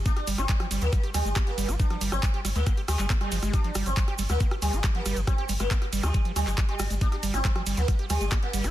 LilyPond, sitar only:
\new Staff \with { instrumentName = "Sitar" } { \time 4/4 \key g \phrygian \tempo 4 = 138 d'8 r16 c'8. r16 bes8 r16 g8 r16 bes8 r16 | d'8 r16 c'8. r16 bes8 r16 g8 r16 g8 r16 | d'8 r16 c'8. r16 bes8 r16 g8 r16 bes8 r16 | c'8 r16 bes8. r16 g8 r16 g8 r16 g8 r16 |
d'8 r16 c'8. r16 bes8 r16 g8 r16 bes8 r16 | }